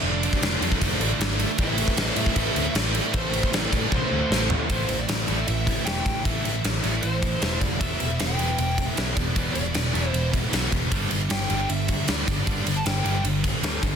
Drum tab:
RD |--x-x-x-x-x-x-x-|x-x-x-x-x-x-x-x-|x-x-x-x---------|x-x-x-x-x-x-x-x-|
SD |----o-------o---|----o-------o---|----o-------o---|----o-------o---|
T1 |----------------|----------------|--------o-------|----------------|
FT |----------------|----------------|--------------o-|----------------|
BD |---o---oo-------|o--o---oo-------|o--o--o-o-------|o---------o---o-|

RD |x-x-x-x-x-x-x-x-|x-x-x-x-x-x-x-x-|x-x-x-x-x-x-x-x-|x-x-x-x-x-x-x-x-|
SD |----o-------o---|----o-------o---|----o-------o---|----oo------o---|
T1 |----------------|----------------|----------------|----------------|
FT |----------------|----------------|----------------|----------------|
BD |o---------o---o-|o---------o---o-|o---------o---o-|o---------o---o-|

RD |x-x-x-x-x-x-x-x-|
SD |----o-------o---|
T1 |----------------|
FT |----------------|
BD |o---------o---o-|